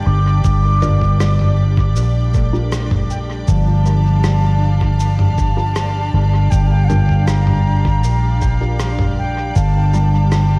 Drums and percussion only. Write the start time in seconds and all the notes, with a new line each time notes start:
0.44 kick, shaker
0.82 mid tom, shaker
1.01 kick
1.20 cross-stick, shaker
1.39 mid tom
1.77 kick
1.96 shaker
2.34 kick, shaker
2.72 cross-stick, shaker
2.91 kick, mid tom
3.10 shaker
3.48 kick, shaker
3.86 shaker
4.24 cross-stick, shaker
4.81 kick
5.00 shaker
5.19 mid tom
5.38 kick, shaker
5.76 cross-stick, shaker
6.52 kick, shaker
6.90 mid tom, shaker
7.09 kick
7.28 cross-stick, shaker
7.47 mid tom
7.85 kick
8.04 shaker
8.42 kick, shaker
8.80 cross-stick, shaker
8.99 kick, mid tom
9.56 kick, shaker
9.94 shaker
10.32 cross-stick, shaker